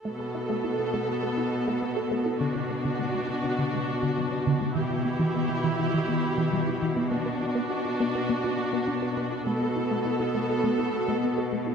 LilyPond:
<<
  \new Staff \with { instrumentName = "Viola section" } { \time 4/4 \key a \mixolydian \tempo 4 = 102 <b a'>1 | <d' fis'>1 | <e' g'>1 | <d' fis'>1 |
<b a'>1 | }
  \new Staff \with { instrumentName = "Synth pluck" } { \time 4/4 \key a \mixolydian a16 a'16 e'16 a16 e'16 e'16 a16 a'16 a16 e'16 r16 a16 c'16 a'16 a16 e'16 | d16 d'16 a16 d16 a16 a16 d16 d'16 d16 a16 r16 d16 fis16 d'16 d16 a16 | e16 e'16 b16 e16 b16 b16 e16 e'16 e16 b16 r16 e16 g16 e'16 e16 b16 | b16 b'16 fis'16 b16 fis'16 fis'16 b16 b'16 b16 fis'16 r16 b16 d'16 b'16 b16 fis'16 |
a16 a'16 e'16 a16 e'16 e'16 a16 a'16 a16 e'16 r16 a16 c'16 a'16 a16 e'16 | }
  \new Staff \with { instrumentName = "Cello section" } { \clef bass \time 4/4 \key a \mixolydian b,1~ | b,1 | b,1~ | b,1 |
b,1 | }
>>